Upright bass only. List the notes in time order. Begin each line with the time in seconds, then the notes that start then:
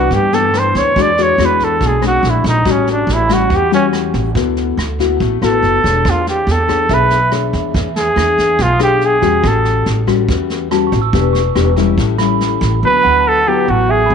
0.11 G2
0.75 D2
0.96 E2
1.38 E2
1.81 B1
2.23 A#1
2.44 A#1
2.66 A1
3.07 A1
3.50 E2
4.14 A1
4.35 D2
4.77 D2
5.20 A1
5.42 A1
5.62 F#1
5.84 E1
6.05 E2
6.47 E2
6.89 B1
7.53 E2
7.74 E2
8.16 E2
8.59 B1
9.22 E2
9.44 A1
9.86 A1
10.29 E2
10.92 A1
11.13 E1
11.56 E1
11.98 A1
12.61 A1
12.83 D2
13.05 D2
13.68 A1
14.10 G#1